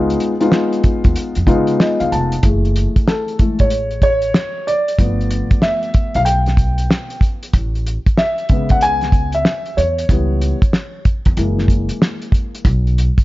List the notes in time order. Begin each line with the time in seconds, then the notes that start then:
Already playing: C#2 G#3 B3 D#4 F4
0.10 closed hi-hat
0.20 closed hi-hat
0.40 G#3 B3 D#4 F4, closed hi-hat
0.52 snare
0.73 closed hi-hat
0.84 kick, closed hi-hat
1.04 D#2, kick, closed hi-hat
1.16 closed hi-hat
1.35 F2, closed hi-hat
1.47 C#3 G#3 B3 D#4 F4, kick, closed hi-hat
1.67 closed hi-hat
1.79 D#5, snare
2.00 C#2 F5, closed hi-hat
2.12 F1 A5, closed hi-hat
2.32 closed hi-hat
2.43 F#1 E3 A3 G#4, kick, closed hi-hat
2.65 closed hi-hat
2.76 closed hi-hat
2.96 kick, closed hi-hat
3.08 A4, snare
3.28 closed hi-hat
3.39 E3 G#3 A3, kick, closed hi-hat
3.59 A1 C#5, kick, closed hi-hat
3.70 closed hi-hat
3.91 closed hi-hat
4.02 C#5, kick, closed hi-hat
4.22 closed hi-hat
4.34 snare
4.67 D5, closed hi-hat
4.88 closed hi-hat
4.99 G1 F3 A3 B3, kick, closed hi-hat
5.21 closed hi-hat
5.31 closed hi-hat
5.51 kick, closed hi-hat
5.62 E5, snare
5.83 closed hi-hat
5.94 kick, closed hi-hat
6.14 B1 F5, closed hi-hat
6.25 G5, closed hi-hat
6.46 snare, closed hi-hat
6.57 kick, closed hi-hat
6.78 closed hi-hat
6.91 snare
7.10 closed hi-hat
7.21 kick, closed hi-hat
7.43 closed hi-hat
7.53 A1, kick, closed hi-hat
7.75 closed hi-hat
7.86 closed hi-hat
8.06 kick, closed hi-hat
8.17 E5, snare
8.38 closed hi-hat
8.49 C#3 G#3 B3, kick, closed hi-hat
8.69 C#2 F#5, kick, closed hi-hat
8.81 G#5, closed hi-hat
9.01 snare, closed hi-hat
9.12 kick, closed hi-hat
9.32 E5, closed hi-hat
9.45 snare
9.66 closed hi-hat
9.77 E2 C#5, closed hi-hat
9.98 closed hi-hat
10.09 C#2 E3 G3 B3, kick, closed hi-hat
10.42 closed hi-hat
10.62 kick, closed hi-hat
10.73 snare
11.05 kick, closed hi-hat
11.25 E2, kick, closed hi-hat
11.37 F#1 E3 G#3 A#3, closed hi-hat
11.58 snare
11.68 kick, closed hi-hat
11.89 closed hi-hat
12.02 snare
12.22 closed hi-hat
12.32 kick, closed hi-hat
12.55 closed hi-hat
12.65 B1, kick, closed hi-hat
12.87 closed hi-hat
12.98 closed hi-hat
13.18 kick, closed hi-hat